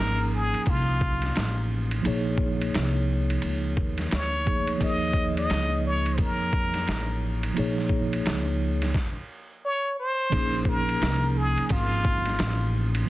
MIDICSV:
0, 0, Header, 1, 6, 480
1, 0, Start_track
1, 0, Key_signature, -5, "minor"
1, 0, Tempo, 689655
1, 1426, Time_signature, 4, 2, 24, 8
1, 9111, End_track
2, 0, Start_track
2, 0, Title_t, "Muted trumpet"
2, 0, Program_c, 0, 59
2, 0, Note_on_c, 0, 70, 89
2, 235, Note_off_c, 0, 70, 0
2, 240, Note_on_c, 0, 68, 84
2, 484, Note_on_c, 0, 65, 79
2, 494, Note_off_c, 0, 68, 0
2, 1195, Note_off_c, 0, 65, 0
2, 2888, Note_on_c, 0, 73, 97
2, 3363, Note_on_c, 0, 75, 91
2, 3374, Note_off_c, 0, 73, 0
2, 3739, Note_off_c, 0, 75, 0
2, 3747, Note_on_c, 0, 75, 97
2, 4051, Note_off_c, 0, 75, 0
2, 4077, Note_on_c, 0, 73, 84
2, 4318, Note_on_c, 0, 70, 81
2, 4329, Note_off_c, 0, 73, 0
2, 5032, Note_off_c, 0, 70, 0
2, 6719, Note_on_c, 0, 73, 98
2, 6936, Note_off_c, 0, 73, 0
2, 6958, Note_on_c, 0, 72, 100
2, 7439, Note_on_c, 0, 70, 91
2, 7449, Note_off_c, 0, 72, 0
2, 7919, Note_on_c, 0, 68, 83
2, 7929, Note_off_c, 0, 70, 0
2, 8157, Note_on_c, 0, 65, 84
2, 8168, Note_off_c, 0, 68, 0
2, 8872, Note_off_c, 0, 65, 0
2, 9111, End_track
3, 0, Start_track
3, 0, Title_t, "Tine electric piano"
3, 0, Program_c, 1, 4
3, 0, Note_on_c, 1, 53, 56
3, 0, Note_on_c, 1, 58, 51
3, 0, Note_on_c, 1, 61, 55
3, 0, Note_on_c, 1, 63, 50
3, 0, Note_on_c, 1, 68, 47
3, 1386, Note_off_c, 1, 53, 0
3, 1391, Note_off_c, 1, 58, 0
3, 1396, Note_off_c, 1, 63, 0
3, 1402, Note_off_c, 1, 68, 0
3, 1404, Note_on_c, 1, 53, 67
3, 1407, Note_off_c, 1, 61, 0
3, 1414, Note_on_c, 1, 58, 63
3, 1425, Note_on_c, 1, 63, 61
3, 1433, Note_on_c, 1, 68, 59
3, 1443, Note_on_c, 1, 73, 76
3, 3067, Note_off_c, 1, 53, 0
3, 3072, Note_off_c, 1, 58, 0
3, 3077, Note_off_c, 1, 63, 0
3, 3082, Note_off_c, 1, 68, 0
3, 3087, Note_off_c, 1, 73, 0
3, 3097, Note_on_c, 1, 53, 37
3, 3102, Note_on_c, 1, 58, 36
3, 3107, Note_on_c, 1, 63, 35
3, 3111, Note_on_c, 1, 68, 39
3, 3118, Note_on_c, 1, 73, 43
3, 3316, Note_off_c, 1, 53, 0
3, 3325, Note_on_c, 1, 53, 59
3, 3326, Note_off_c, 1, 58, 0
3, 3334, Note_on_c, 1, 58, 49
3, 3336, Note_off_c, 1, 63, 0
3, 3345, Note_on_c, 1, 63, 47
3, 3347, Note_off_c, 1, 68, 0
3, 3352, Note_off_c, 1, 73, 0
3, 3355, Note_on_c, 1, 68, 52
3, 3364, Note_on_c, 1, 73, 64
3, 5227, Note_off_c, 1, 53, 0
3, 5232, Note_off_c, 1, 58, 0
3, 5237, Note_off_c, 1, 63, 0
3, 5243, Note_off_c, 1, 68, 0
3, 5243, Note_on_c, 1, 53, 63
3, 5247, Note_off_c, 1, 73, 0
3, 5253, Note_on_c, 1, 58, 58
3, 5264, Note_on_c, 1, 63, 62
3, 5274, Note_on_c, 1, 68, 60
3, 5284, Note_on_c, 1, 73, 71
3, 6195, Note_off_c, 1, 53, 0
3, 6200, Note_off_c, 1, 58, 0
3, 6205, Note_off_c, 1, 63, 0
3, 6211, Note_off_c, 1, 68, 0
3, 6216, Note_off_c, 1, 73, 0
3, 7167, Note_on_c, 1, 53, 55
3, 7177, Note_on_c, 1, 58, 52
3, 7186, Note_on_c, 1, 63, 54
3, 7197, Note_on_c, 1, 68, 56
3, 7208, Note_on_c, 1, 61, 63
3, 9069, Note_off_c, 1, 53, 0
3, 9073, Note_off_c, 1, 58, 0
3, 9078, Note_off_c, 1, 63, 0
3, 9084, Note_off_c, 1, 68, 0
3, 9085, Note_on_c, 1, 53, 64
3, 9089, Note_off_c, 1, 61, 0
3, 9111, Note_off_c, 1, 53, 0
3, 9111, End_track
4, 0, Start_track
4, 0, Title_t, "Upright bass"
4, 0, Program_c, 2, 32
4, 0, Note_on_c, 2, 32, 72
4, 353, Note_off_c, 2, 32, 0
4, 467, Note_on_c, 2, 36, 75
4, 922, Note_off_c, 2, 36, 0
4, 949, Note_on_c, 2, 33, 82
4, 1403, Note_off_c, 2, 33, 0
4, 1431, Note_on_c, 2, 34, 85
4, 1884, Note_off_c, 2, 34, 0
4, 1909, Note_on_c, 2, 36, 80
4, 2363, Note_off_c, 2, 36, 0
4, 2388, Note_on_c, 2, 37, 72
4, 2615, Note_off_c, 2, 37, 0
4, 2626, Note_on_c, 2, 39, 85
4, 2854, Note_off_c, 2, 39, 0
4, 2870, Note_on_c, 2, 38, 82
4, 3324, Note_off_c, 2, 38, 0
4, 3346, Note_on_c, 2, 39, 90
4, 3802, Note_off_c, 2, 39, 0
4, 3830, Note_on_c, 2, 37, 74
4, 4284, Note_off_c, 2, 37, 0
4, 4307, Note_on_c, 2, 41, 74
4, 4762, Note_off_c, 2, 41, 0
4, 4787, Note_on_c, 2, 33, 82
4, 5242, Note_off_c, 2, 33, 0
4, 5269, Note_on_c, 2, 34, 85
4, 5723, Note_off_c, 2, 34, 0
4, 5746, Note_on_c, 2, 37, 70
4, 6202, Note_off_c, 2, 37, 0
4, 7187, Note_on_c, 2, 34, 93
4, 7642, Note_off_c, 2, 34, 0
4, 7667, Note_on_c, 2, 36, 76
4, 8032, Note_off_c, 2, 36, 0
4, 8147, Note_on_c, 2, 32, 81
4, 8603, Note_off_c, 2, 32, 0
4, 8627, Note_on_c, 2, 33, 95
4, 9082, Note_off_c, 2, 33, 0
4, 9111, End_track
5, 0, Start_track
5, 0, Title_t, "Muted upright bass strokes"
5, 374, Note_on_c, 9, 29, 43
5, 443, Note_off_c, 9, 29, 0
5, 8052, Note_on_c, 9, 29, 46
5, 8121, Note_off_c, 9, 29, 0
5, 9111, End_track
6, 0, Start_track
6, 0, Title_t, "Drums"
6, 377, Note_on_c, 9, 51, 46
6, 446, Note_off_c, 9, 51, 0
6, 458, Note_on_c, 9, 51, 57
6, 465, Note_on_c, 9, 36, 78
6, 528, Note_off_c, 9, 51, 0
6, 534, Note_off_c, 9, 36, 0
6, 704, Note_on_c, 9, 36, 81
6, 773, Note_off_c, 9, 36, 0
6, 848, Note_on_c, 9, 51, 49
6, 859, Note_on_c, 9, 38, 28
6, 918, Note_off_c, 9, 51, 0
6, 928, Note_off_c, 9, 38, 0
6, 944, Note_on_c, 9, 44, 40
6, 944, Note_on_c, 9, 51, 57
6, 952, Note_on_c, 9, 38, 100
6, 1014, Note_off_c, 9, 44, 0
6, 1014, Note_off_c, 9, 51, 0
6, 1022, Note_off_c, 9, 38, 0
6, 1332, Note_on_c, 9, 51, 51
6, 1401, Note_off_c, 9, 51, 0
6, 1427, Note_on_c, 9, 51, 63
6, 1496, Note_off_c, 9, 51, 0
6, 1654, Note_on_c, 9, 36, 83
6, 1724, Note_off_c, 9, 36, 0
6, 1820, Note_on_c, 9, 51, 57
6, 1890, Note_off_c, 9, 51, 0
6, 1910, Note_on_c, 9, 44, 44
6, 1910, Note_on_c, 9, 51, 59
6, 1917, Note_on_c, 9, 38, 93
6, 1979, Note_off_c, 9, 44, 0
6, 1979, Note_off_c, 9, 51, 0
6, 1987, Note_off_c, 9, 38, 0
6, 2297, Note_on_c, 9, 51, 48
6, 2367, Note_off_c, 9, 51, 0
6, 2380, Note_on_c, 9, 51, 55
6, 2449, Note_off_c, 9, 51, 0
6, 2624, Note_on_c, 9, 36, 80
6, 2694, Note_off_c, 9, 36, 0
6, 2768, Note_on_c, 9, 51, 49
6, 2778, Note_on_c, 9, 38, 29
6, 2838, Note_off_c, 9, 51, 0
6, 2848, Note_off_c, 9, 38, 0
6, 2863, Note_on_c, 9, 44, 42
6, 2863, Note_on_c, 9, 51, 58
6, 2871, Note_on_c, 9, 38, 104
6, 2932, Note_off_c, 9, 44, 0
6, 2932, Note_off_c, 9, 51, 0
6, 2941, Note_off_c, 9, 38, 0
6, 3110, Note_on_c, 9, 36, 83
6, 3180, Note_off_c, 9, 36, 0
6, 3253, Note_on_c, 9, 51, 56
6, 3323, Note_off_c, 9, 51, 0
6, 3345, Note_on_c, 9, 36, 90
6, 3346, Note_on_c, 9, 51, 66
6, 3414, Note_off_c, 9, 36, 0
6, 3415, Note_off_c, 9, 51, 0
6, 3573, Note_on_c, 9, 36, 78
6, 3643, Note_off_c, 9, 36, 0
6, 3739, Note_on_c, 9, 51, 57
6, 3809, Note_off_c, 9, 51, 0
6, 3827, Note_on_c, 9, 44, 44
6, 3827, Note_on_c, 9, 51, 59
6, 3834, Note_on_c, 9, 38, 106
6, 3896, Note_off_c, 9, 44, 0
6, 3896, Note_off_c, 9, 51, 0
6, 3904, Note_off_c, 9, 38, 0
6, 4218, Note_on_c, 9, 51, 48
6, 4287, Note_off_c, 9, 51, 0
6, 4299, Note_on_c, 9, 51, 56
6, 4305, Note_on_c, 9, 36, 81
6, 4369, Note_off_c, 9, 51, 0
6, 4374, Note_off_c, 9, 36, 0
6, 4544, Note_on_c, 9, 36, 81
6, 4614, Note_off_c, 9, 36, 0
6, 4690, Note_on_c, 9, 51, 53
6, 4701, Note_on_c, 9, 38, 30
6, 4760, Note_off_c, 9, 51, 0
6, 4770, Note_off_c, 9, 38, 0
6, 4785, Note_on_c, 9, 44, 41
6, 4785, Note_on_c, 9, 51, 55
6, 4793, Note_on_c, 9, 38, 107
6, 4854, Note_off_c, 9, 44, 0
6, 4854, Note_off_c, 9, 51, 0
6, 4863, Note_off_c, 9, 38, 0
6, 5173, Note_on_c, 9, 51, 60
6, 5243, Note_off_c, 9, 51, 0
6, 5267, Note_on_c, 9, 51, 62
6, 5336, Note_off_c, 9, 51, 0
6, 5416, Note_on_c, 9, 38, 25
6, 5486, Note_off_c, 9, 38, 0
6, 5494, Note_on_c, 9, 36, 79
6, 5564, Note_off_c, 9, 36, 0
6, 5659, Note_on_c, 9, 51, 57
6, 5728, Note_off_c, 9, 51, 0
6, 5747, Note_on_c, 9, 44, 43
6, 5747, Note_on_c, 9, 51, 61
6, 5754, Note_on_c, 9, 38, 100
6, 5816, Note_off_c, 9, 44, 0
6, 5816, Note_off_c, 9, 51, 0
6, 5823, Note_off_c, 9, 38, 0
6, 6138, Note_on_c, 9, 51, 51
6, 6140, Note_on_c, 9, 38, 34
6, 6208, Note_off_c, 9, 51, 0
6, 6210, Note_off_c, 9, 38, 0
6, 6225, Note_on_c, 9, 36, 94
6, 6233, Note_on_c, 9, 38, 76
6, 6295, Note_off_c, 9, 36, 0
6, 6303, Note_off_c, 9, 38, 0
6, 7184, Note_on_c, 9, 51, 70
6, 7185, Note_on_c, 9, 36, 98
6, 7253, Note_off_c, 9, 51, 0
6, 7254, Note_off_c, 9, 36, 0
6, 7414, Note_on_c, 9, 36, 84
6, 7483, Note_off_c, 9, 36, 0
6, 7579, Note_on_c, 9, 51, 61
6, 7648, Note_off_c, 9, 51, 0
6, 7668, Note_on_c, 9, 44, 47
6, 7668, Note_on_c, 9, 51, 61
6, 7675, Note_on_c, 9, 38, 109
6, 7738, Note_off_c, 9, 44, 0
6, 7738, Note_off_c, 9, 51, 0
6, 7745, Note_off_c, 9, 38, 0
6, 8057, Note_on_c, 9, 51, 44
6, 8127, Note_off_c, 9, 51, 0
6, 8138, Note_on_c, 9, 51, 65
6, 8146, Note_on_c, 9, 36, 90
6, 8208, Note_off_c, 9, 51, 0
6, 8215, Note_off_c, 9, 36, 0
6, 8385, Note_on_c, 9, 36, 83
6, 8455, Note_off_c, 9, 36, 0
6, 8529, Note_on_c, 9, 51, 53
6, 8540, Note_on_c, 9, 38, 32
6, 8599, Note_off_c, 9, 51, 0
6, 8609, Note_off_c, 9, 38, 0
6, 8622, Note_on_c, 9, 44, 44
6, 8622, Note_on_c, 9, 51, 63
6, 8630, Note_on_c, 9, 38, 97
6, 8691, Note_off_c, 9, 44, 0
6, 8691, Note_off_c, 9, 51, 0
6, 8699, Note_off_c, 9, 38, 0
6, 9012, Note_on_c, 9, 51, 58
6, 9081, Note_off_c, 9, 51, 0
6, 9111, End_track
0, 0, End_of_file